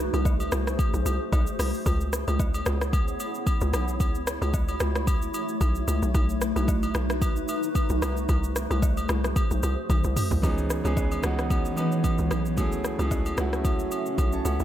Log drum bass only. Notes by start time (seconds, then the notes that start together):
Already playing: C2
0.13 C2
0.52 C2
0.94 B1
1.06 C2
1.32 B1
1.59 C2
1.86 C#2
2.28 C#2
2.66 C#2
3.61 C#2
3.73 B1
4.00 C#2
4.42 C#2
4.81 C#2
5.61 B1
5.88 C#2
6.02 B1
6.14 B1
6.56 B1
6.95 B1
7.90 B1
8.02 C2
8.29 C2
8.71 C2
9.09 C2
9.51 B1
9.63 C2
9.90 B1
10.04 C2
10.31 C2
10.43 C#2
10.85 C#2
11.24 C#2
12.19 C#2
12.31 B1
12.58 C#2
12.99 C#2
13.38 C#2
14.18 B1
14.45 C#2
14.60 B1